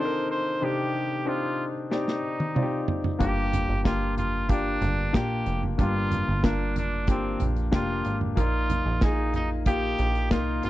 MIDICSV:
0, 0, Header, 1, 5, 480
1, 0, Start_track
1, 0, Tempo, 645786
1, 464, Time_signature, 4, 2, 24, 8
1, 7952, End_track
2, 0, Start_track
2, 0, Title_t, "Trumpet"
2, 0, Program_c, 0, 56
2, 0, Note_on_c, 0, 72, 86
2, 228, Note_off_c, 0, 72, 0
2, 232, Note_on_c, 0, 72, 86
2, 478, Note_on_c, 0, 67, 87
2, 489, Note_off_c, 0, 72, 0
2, 951, Note_on_c, 0, 65, 79
2, 962, Note_off_c, 0, 67, 0
2, 1226, Note_off_c, 0, 65, 0
2, 1431, Note_on_c, 0, 63, 76
2, 2118, Note_off_c, 0, 63, 0
2, 2384, Note_on_c, 0, 67, 90
2, 2834, Note_off_c, 0, 67, 0
2, 2871, Note_on_c, 0, 65, 86
2, 3091, Note_off_c, 0, 65, 0
2, 3107, Note_on_c, 0, 65, 83
2, 3345, Note_on_c, 0, 62, 89
2, 3356, Note_off_c, 0, 65, 0
2, 3833, Note_on_c, 0, 67, 86
2, 3844, Note_off_c, 0, 62, 0
2, 4188, Note_off_c, 0, 67, 0
2, 4314, Note_on_c, 0, 65, 91
2, 4793, Note_on_c, 0, 62, 79
2, 4804, Note_off_c, 0, 65, 0
2, 5028, Note_off_c, 0, 62, 0
2, 5042, Note_on_c, 0, 62, 78
2, 5256, Note_off_c, 0, 62, 0
2, 5281, Note_on_c, 0, 60, 78
2, 5532, Note_off_c, 0, 60, 0
2, 5755, Note_on_c, 0, 65, 81
2, 6084, Note_off_c, 0, 65, 0
2, 6239, Note_on_c, 0, 65, 86
2, 6720, Note_on_c, 0, 63, 75
2, 6731, Note_off_c, 0, 65, 0
2, 6952, Note_off_c, 0, 63, 0
2, 6956, Note_on_c, 0, 63, 81
2, 7061, Note_off_c, 0, 63, 0
2, 7191, Note_on_c, 0, 67, 105
2, 7638, Note_off_c, 0, 67, 0
2, 7671, Note_on_c, 0, 65, 86
2, 7891, Note_off_c, 0, 65, 0
2, 7914, Note_on_c, 0, 65, 81
2, 7952, Note_off_c, 0, 65, 0
2, 7952, End_track
3, 0, Start_track
3, 0, Title_t, "Grand piano"
3, 0, Program_c, 1, 0
3, 0, Control_c, 1, 64, 127
3, 0, Note_on_c, 1, 48, 57
3, 0, Note_on_c, 1, 51, 61
3, 0, Note_on_c, 1, 60, 65
3, 0, Note_on_c, 1, 62, 59
3, 0, Note_on_c, 1, 63, 57
3, 0, Note_on_c, 1, 65, 70
3, 0, Note_on_c, 1, 67, 73
3, 0, Note_on_c, 1, 69, 59
3, 0, Note_on_c, 1, 74, 53
3, 38, Note_on_c, 1, 70, 76
3, 328, Note_off_c, 1, 60, 0
3, 329, Note_off_c, 1, 62, 0
3, 331, Note_off_c, 1, 63, 0
3, 358, Note_off_c, 1, 70, 0
3, 451, Note_on_c, 1, 60, 61
3, 455, Note_on_c, 1, 62, 56
3, 457, Note_on_c, 1, 63, 54
3, 459, Note_off_c, 1, 48, 0
3, 459, Note_on_c, 1, 48, 50
3, 462, Note_off_c, 1, 67, 0
3, 462, Note_on_c, 1, 67, 60
3, 804, Note_off_c, 1, 60, 0
3, 807, Note_off_c, 1, 62, 0
3, 807, Note_off_c, 1, 63, 0
3, 810, Note_off_c, 1, 67, 0
3, 932, Note_on_c, 1, 60, 62
3, 934, Note_on_c, 1, 62, 58
3, 935, Note_on_c, 1, 63, 61
3, 938, Note_on_c, 1, 67, 69
3, 1151, Note_off_c, 1, 48, 0
3, 1285, Note_off_c, 1, 60, 0
3, 1286, Note_off_c, 1, 62, 0
3, 1286, Note_off_c, 1, 63, 0
3, 1288, Note_off_c, 1, 67, 0
3, 1416, Note_on_c, 1, 60, 63
3, 1422, Note_off_c, 1, 74, 0
3, 1422, Note_on_c, 1, 63, 58
3, 1422, Note_on_c, 1, 74, 56
3, 1423, Note_on_c, 1, 67, 74
3, 1767, Note_off_c, 1, 60, 0
3, 1770, Note_off_c, 1, 63, 0
3, 1770, Note_off_c, 1, 67, 0
3, 1770, Note_off_c, 1, 74, 0
3, 1893, Note_on_c, 1, 60, 56
3, 1897, Note_on_c, 1, 74, 52
3, 1899, Note_on_c, 1, 63, 53
3, 1904, Note_off_c, 1, 65, 0
3, 1904, Note_on_c, 1, 65, 53
3, 1951, Note_on_c, 1, 67, 65
3, 1952, Note_off_c, 1, 65, 0
3, 2245, Note_off_c, 1, 60, 0
3, 2247, Note_off_c, 1, 74, 0
3, 2249, Note_off_c, 1, 63, 0
3, 2274, Note_off_c, 1, 67, 0
3, 2368, Note_on_c, 1, 58, 65
3, 2372, Note_on_c, 1, 43, 51
3, 2372, Note_on_c, 1, 62, 58
3, 2375, Note_on_c, 1, 65, 58
3, 2378, Note_on_c, 1, 67, 62
3, 2393, Control_c, 1, 64, 0
3, 2395, Note_off_c, 1, 51, 0
3, 2398, Note_off_c, 1, 69, 0
3, 2507, Control_c, 1, 64, 127
3, 2723, Note_off_c, 1, 58, 0
3, 2725, Note_off_c, 1, 62, 0
3, 2727, Note_off_c, 1, 65, 0
3, 2728, Note_off_c, 1, 67, 0
3, 2854, Note_on_c, 1, 58, 67
3, 2856, Note_on_c, 1, 62, 52
3, 2860, Note_on_c, 1, 65, 55
3, 2863, Note_on_c, 1, 67, 72
3, 3068, Note_off_c, 1, 43, 0
3, 3206, Note_off_c, 1, 58, 0
3, 3207, Note_off_c, 1, 62, 0
3, 3209, Note_off_c, 1, 65, 0
3, 3210, Note_off_c, 1, 67, 0
3, 3336, Note_on_c, 1, 58, 64
3, 3338, Note_on_c, 1, 62, 62
3, 3342, Note_on_c, 1, 65, 63
3, 3344, Note_on_c, 1, 67, 78
3, 3687, Note_off_c, 1, 58, 0
3, 3688, Note_off_c, 1, 62, 0
3, 3690, Note_off_c, 1, 65, 0
3, 3691, Note_off_c, 1, 67, 0
3, 3810, Note_on_c, 1, 58, 68
3, 3814, Note_on_c, 1, 62, 61
3, 3814, Note_on_c, 1, 65, 62
3, 3819, Note_on_c, 1, 67, 66
3, 4164, Note_off_c, 1, 58, 0
3, 4166, Note_off_c, 1, 62, 0
3, 4166, Note_off_c, 1, 65, 0
3, 4168, Note_off_c, 1, 67, 0
3, 4295, Note_on_c, 1, 58, 63
3, 4296, Note_on_c, 1, 62, 60
3, 4297, Note_on_c, 1, 43, 57
3, 4298, Note_on_c, 1, 65, 54
3, 4303, Note_on_c, 1, 67, 75
3, 4647, Note_off_c, 1, 58, 0
3, 4647, Note_off_c, 1, 62, 0
3, 4648, Note_off_c, 1, 65, 0
3, 4650, Note_off_c, 1, 67, 0
3, 4777, Note_on_c, 1, 58, 64
3, 4779, Note_on_c, 1, 62, 59
3, 4782, Note_on_c, 1, 65, 62
3, 4787, Note_on_c, 1, 70, 64
3, 4991, Note_off_c, 1, 43, 0
3, 5127, Note_off_c, 1, 58, 0
3, 5128, Note_off_c, 1, 62, 0
3, 5130, Note_off_c, 1, 65, 0
3, 5132, Note_off_c, 1, 70, 0
3, 5258, Note_on_c, 1, 58, 65
3, 5262, Note_on_c, 1, 62, 59
3, 5263, Note_on_c, 1, 65, 60
3, 5267, Note_on_c, 1, 67, 77
3, 5608, Note_off_c, 1, 58, 0
3, 5610, Note_off_c, 1, 62, 0
3, 5610, Note_off_c, 1, 65, 0
3, 5613, Note_off_c, 1, 67, 0
3, 5734, Note_on_c, 1, 58, 61
3, 5734, Note_on_c, 1, 62, 66
3, 5737, Note_on_c, 1, 65, 62
3, 5740, Note_on_c, 1, 67, 73
3, 6086, Note_off_c, 1, 58, 0
3, 6086, Note_off_c, 1, 62, 0
3, 6088, Note_off_c, 1, 65, 0
3, 6089, Note_off_c, 1, 67, 0
3, 6210, Note_on_c, 1, 58, 68
3, 6216, Note_on_c, 1, 46, 59
3, 6216, Note_on_c, 1, 63, 59
3, 6218, Note_on_c, 1, 65, 59
3, 6221, Note_on_c, 1, 70, 69
3, 6234, Control_c, 1, 64, 0
3, 6358, Control_c, 1, 64, 127
3, 6564, Note_off_c, 1, 58, 0
3, 6567, Note_off_c, 1, 63, 0
3, 6568, Note_off_c, 1, 65, 0
3, 6569, Note_off_c, 1, 70, 0
3, 6702, Note_on_c, 1, 58, 62
3, 6703, Note_on_c, 1, 63, 58
3, 6707, Note_on_c, 1, 65, 62
3, 6711, Note_on_c, 1, 68, 80
3, 6910, Note_off_c, 1, 46, 0
3, 7050, Note_off_c, 1, 58, 0
3, 7050, Note_off_c, 1, 63, 0
3, 7052, Note_off_c, 1, 65, 0
3, 7055, Note_off_c, 1, 68, 0
3, 7181, Note_on_c, 1, 58, 69
3, 7183, Note_on_c, 1, 63, 62
3, 7186, Note_on_c, 1, 65, 70
3, 7192, Note_on_c, 1, 67, 83
3, 7530, Note_off_c, 1, 58, 0
3, 7531, Note_off_c, 1, 63, 0
3, 7532, Note_off_c, 1, 65, 0
3, 7535, Note_off_c, 1, 67, 0
3, 7660, Note_on_c, 1, 58, 67
3, 7666, Note_on_c, 1, 63, 66
3, 7669, Note_on_c, 1, 65, 60
3, 7670, Note_on_c, 1, 70, 68
3, 7952, Note_off_c, 1, 58, 0
3, 7952, Note_off_c, 1, 63, 0
3, 7952, Note_off_c, 1, 65, 0
3, 7952, Note_off_c, 1, 70, 0
3, 7952, End_track
4, 0, Start_track
4, 0, Title_t, "Analog synth bass"
4, 0, Program_c, 2, 38
4, 2384, Note_on_c, 2, 31, 88
4, 2719, Note_off_c, 2, 31, 0
4, 2743, Note_on_c, 2, 31, 79
4, 2855, Note_off_c, 2, 31, 0
4, 2864, Note_on_c, 2, 31, 89
4, 3554, Note_off_c, 2, 31, 0
4, 3578, Note_on_c, 2, 31, 102
4, 3804, Note_off_c, 2, 31, 0
4, 3825, Note_on_c, 2, 34, 93
4, 4048, Note_off_c, 2, 34, 0
4, 4061, Note_on_c, 2, 29, 89
4, 4285, Note_off_c, 2, 29, 0
4, 4303, Note_on_c, 2, 31, 100
4, 4638, Note_off_c, 2, 31, 0
4, 4669, Note_on_c, 2, 31, 85
4, 4778, Note_off_c, 2, 31, 0
4, 4786, Note_on_c, 2, 31, 93
4, 5475, Note_off_c, 2, 31, 0
4, 5512, Note_on_c, 2, 34, 82
4, 5731, Note_off_c, 2, 34, 0
4, 5743, Note_on_c, 2, 29, 87
4, 5967, Note_off_c, 2, 29, 0
4, 5990, Note_on_c, 2, 32, 83
4, 6210, Note_off_c, 2, 32, 0
4, 6225, Note_on_c, 2, 34, 100
4, 6559, Note_off_c, 2, 34, 0
4, 6583, Note_on_c, 2, 34, 87
4, 6695, Note_off_c, 2, 34, 0
4, 6704, Note_on_c, 2, 34, 85
4, 7394, Note_off_c, 2, 34, 0
4, 7426, Note_on_c, 2, 34, 91
4, 7666, Note_on_c, 2, 36, 94
4, 7677, Note_off_c, 2, 34, 0
4, 7888, Note_off_c, 2, 36, 0
4, 7909, Note_on_c, 2, 32, 90
4, 7952, Note_off_c, 2, 32, 0
4, 7952, End_track
5, 0, Start_track
5, 0, Title_t, "Drums"
5, 1424, Note_on_c, 9, 38, 49
5, 1498, Note_off_c, 9, 38, 0
5, 1544, Note_on_c, 9, 38, 51
5, 1619, Note_off_c, 9, 38, 0
5, 1784, Note_on_c, 9, 48, 54
5, 1858, Note_off_c, 9, 48, 0
5, 1903, Note_on_c, 9, 47, 75
5, 1978, Note_off_c, 9, 47, 0
5, 2141, Note_on_c, 9, 43, 76
5, 2215, Note_off_c, 9, 43, 0
5, 2262, Note_on_c, 9, 43, 85
5, 2336, Note_off_c, 9, 43, 0
5, 2382, Note_on_c, 9, 36, 96
5, 2383, Note_on_c, 9, 42, 66
5, 2456, Note_off_c, 9, 36, 0
5, 2458, Note_off_c, 9, 42, 0
5, 2626, Note_on_c, 9, 42, 69
5, 2626, Note_on_c, 9, 43, 62
5, 2700, Note_off_c, 9, 42, 0
5, 2701, Note_off_c, 9, 43, 0
5, 2864, Note_on_c, 9, 36, 95
5, 2864, Note_on_c, 9, 38, 89
5, 2868, Note_on_c, 9, 42, 70
5, 2938, Note_off_c, 9, 38, 0
5, 2939, Note_off_c, 9, 36, 0
5, 2942, Note_off_c, 9, 42, 0
5, 3104, Note_on_c, 9, 42, 62
5, 3105, Note_on_c, 9, 43, 52
5, 3178, Note_off_c, 9, 42, 0
5, 3179, Note_off_c, 9, 43, 0
5, 3338, Note_on_c, 9, 42, 78
5, 3341, Note_on_c, 9, 36, 88
5, 3413, Note_off_c, 9, 42, 0
5, 3415, Note_off_c, 9, 36, 0
5, 3579, Note_on_c, 9, 43, 53
5, 3580, Note_on_c, 9, 42, 54
5, 3654, Note_off_c, 9, 42, 0
5, 3654, Note_off_c, 9, 43, 0
5, 3823, Note_on_c, 9, 36, 100
5, 3824, Note_on_c, 9, 38, 102
5, 3826, Note_on_c, 9, 42, 82
5, 3897, Note_off_c, 9, 36, 0
5, 3898, Note_off_c, 9, 38, 0
5, 3901, Note_off_c, 9, 42, 0
5, 4059, Note_on_c, 9, 42, 60
5, 4134, Note_off_c, 9, 42, 0
5, 4185, Note_on_c, 9, 43, 55
5, 4259, Note_off_c, 9, 43, 0
5, 4303, Note_on_c, 9, 36, 98
5, 4304, Note_on_c, 9, 42, 68
5, 4377, Note_off_c, 9, 36, 0
5, 4378, Note_off_c, 9, 42, 0
5, 4545, Note_on_c, 9, 42, 67
5, 4545, Note_on_c, 9, 43, 66
5, 4619, Note_off_c, 9, 42, 0
5, 4620, Note_off_c, 9, 43, 0
5, 4784, Note_on_c, 9, 38, 94
5, 4786, Note_on_c, 9, 36, 91
5, 4788, Note_on_c, 9, 42, 73
5, 4859, Note_off_c, 9, 38, 0
5, 4860, Note_off_c, 9, 36, 0
5, 4863, Note_off_c, 9, 42, 0
5, 5024, Note_on_c, 9, 42, 57
5, 5025, Note_on_c, 9, 43, 52
5, 5098, Note_off_c, 9, 42, 0
5, 5099, Note_off_c, 9, 43, 0
5, 5258, Note_on_c, 9, 42, 82
5, 5262, Note_on_c, 9, 36, 97
5, 5332, Note_off_c, 9, 42, 0
5, 5336, Note_off_c, 9, 36, 0
5, 5499, Note_on_c, 9, 42, 60
5, 5499, Note_on_c, 9, 43, 52
5, 5573, Note_off_c, 9, 43, 0
5, 5574, Note_off_c, 9, 42, 0
5, 5623, Note_on_c, 9, 42, 37
5, 5697, Note_off_c, 9, 42, 0
5, 5741, Note_on_c, 9, 38, 99
5, 5743, Note_on_c, 9, 42, 79
5, 5744, Note_on_c, 9, 36, 98
5, 5815, Note_off_c, 9, 38, 0
5, 5818, Note_off_c, 9, 36, 0
5, 5818, Note_off_c, 9, 42, 0
5, 5980, Note_on_c, 9, 42, 60
5, 6054, Note_off_c, 9, 42, 0
5, 6103, Note_on_c, 9, 43, 58
5, 6177, Note_off_c, 9, 43, 0
5, 6222, Note_on_c, 9, 42, 69
5, 6223, Note_on_c, 9, 36, 98
5, 6296, Note_off_c, 9, 42, 0
5, 6297, Note_off_c, 9, 36, 0
5, 6463, Note_on_c, 9, 42, 61
5, 6464, Note_on_c, 9, 43, 60
5, 6538, Note_off_c, 9, 42, 0
5, 6538, Note_off_c, 9, 43, 0
5, 6699, Note_on_c, 9, 38, 93
5, 6703, Note_on_c, 9, 42, 73
5, 6704, Note_on_c, 9, 36, 106
5, 6773, Note_off_c, 9, 38, 0
5, 6777, Note_off_c, 9, 42, 0
5, 6779, Note_off_c, 9, 36, 0
5, 6940, Note_on_c, 9, 42, 55
5, 6941, Note_on_c, 9, 43, 53
5, 7014, Note_off_c, 9, 42, 0
5, 7016, Note_off_c, 9, 43, 0
5, 7178, Note_on_c, 9, 42, 82
5, 7181, Note_on_c, 9, 36, 88
5, 7253, Note_off_c, 9, 42, 0
5, 7256, Note_off_c, 9, 36, 0
5, 7421, Note_on_c, 9, 42, 62
5, 7496, Note_off_c, 9, 42, 0
5, 7545, Note_on_c, 9, 42, 36
5, 7619, Note_off_c, 9, 42, 0
5, 7662, Note_on_c, 9, 38, 94
5, 7664, Note_on_c, 9, 36, 104
5, 7664, Note_on_c, 9, 42, 73
5, 7736, Note_off_c, 9, 38, 0
5, 7738, Note_off_c, 9, 36, 0
5, 7738, Note_off_c, 9, 42, 0
5, 7901, Note_on_c, 9, 42, 67
5, 7952, Note_off_c, 9, 42, 0
5, 7952, End_track
0, 0, End_of_file